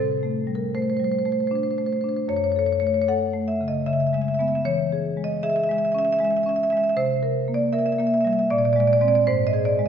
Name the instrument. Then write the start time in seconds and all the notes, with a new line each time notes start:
marimba
Already playing: C3 A4
0.23 A3
0.47 G3
0.55 A#4
0.75 A3 C5
0.82 C5
0.90 C5
0.97 G3 C5
1.04 C5
1.11 C5
1.19 C5
1.25 A3 C5
1.32 C5
1.40 C5
1.47 D4 C5
1.55 C5
1.63 C5
1.71 C5
1.78 A3 C5
1.86 C5
1.93 C5
2.01 D4 C5
2.09 C5
2.17 C5
2.28 F#2 C#5
2.37 C#5
2.44 C#5
2.52 C#5
2.56 A4 C#5
2.66 C#5
2.72 C#5
2.80 A3 C#5
2.87 C#5
2.94 C#5
3.02 C#5
3.08 A4 F#5
3.34 A3
3.48 E5
3.61 C#3
3.68 D#5
3.86 C#3 E5
3.93 E5
4.00 E5
4.07 E5
4.13 G#3 E5
4.22 E5
4.28 E5
4.34 E5
4.39 G#3 B3 E5
4.48 E5
4.55 E5
4.65 E3 C#5
4.92 G#4
5.17 G#3
5.24 D#5
5.43 G#4 E5
5.50 E5
5.56 E5
5.64 E5
5.69 G#3 E5
5.78 E5
5.85 E5
5.92 C#4 E5
5.99 E5
6.05 E5
6.12 E5
6.19 G#3 E5
6.25 E5
6.31 E5
6.37 E5
6.43 C#4 E5
6.49 E5
6.56 E5
6.63 E5
6.70 G#3 E5
6.77 E5
6.83 E5
6.89 E5
6.97 C3 C5
7.23 A#4
7.48 A#3
7.54 D5
7.73 A#4 E5
7.79 E5
7.86 E5
7.92 E5
7.99 A#3 E5
8.07 E5
8.14 E5
8.21 G3 E5
8.27 E5
8.33 E5
8.39 E5
8.50 A#2 D5
8.58 D5
8.65 D5
8.73 G#3 D5
8.80 D5
8.87 D5
8.93 D5
9.01 G#3 C4 D5
9.08 D5
9.15 D5
9.27 G#2 C5
9.47 D#5
9.53 G#4
9.65 D5
9.79 G#3